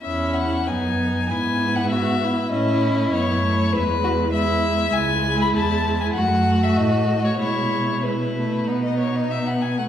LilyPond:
<<
  \new Staff \with { instrumentName = "Violin" } { \time 4/4 \key e \major \tempo 4 = 97 e''8 fis''8 gis''4 gis''8. fis''16 e''4 | dis''4 cis''4 b'4 e''4 | gis''8. b''16 a''8. gis''16 fis''8. e''16 dis''8. cis''16 | cis''4 b'4~ b'16 dis''16 cis''16 dis''16 e''16 fis''16 gis''16 fis''16 | }
  \new Staff \with { instrumentName = "Violin" } { \time 4/4 \key e \major e'4 dis'4 e'4 fis'8 e'8~ | e'2 e'8 fis'8 e'4 | e'2 fis'2 | e'4 e'4 dis'4. r8 | }
  \new Staff \with { instrumentName = "Viola" } { \time 4/4 \key e \major cis'4 b4 b2 | cis'4 b8 a8 gis4 gis4 | gis2 a2 | gis4 gis8 a8 b4 b8. a16 | }
  \new Staff \with { instrumentName = "Cello" } { \clef bass \time 4/4 \key e \major e,4 fis,4 gis,2 | a,4 fis,4 e,2 | cis,4 e,4 fis,4 a,4 | b,2 b,4. r8 | }
>>